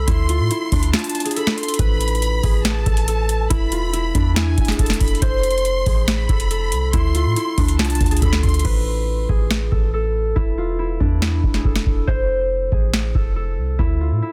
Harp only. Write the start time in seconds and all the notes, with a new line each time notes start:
Already playing: A4 C5
0.07 E4
0.29 F4
0.51 E4
0.72 D4
0.94 F4
1.25 G#4
1.36 A4
1.79 B4
2.43 G#4
2.86 A4
3.08 A4
3.50 E4
3.72 F4
3.93 E4
4.14 D4
4.37 E4
4.68 G#4
4.80 A4
5.22 C5
5.87 G#4
6.29 A4
6.50 A4
6.93 E4
7.15 F4
7.37 E4
7.58 D4
7.79 F4
8.11 G#4
8.22 A4
8.65 B4
9.29 G#4
9.71 A4
9.94 A4
10.36 E4
10.58 F4
10.79 E4
11.00 D4
11.22 E4
11.54 G#4
11.66 A4
12.07 C5
12.72 G#4
13.15 A4
13.36 A4
13.79 E4
14.01 F4
14.22 E4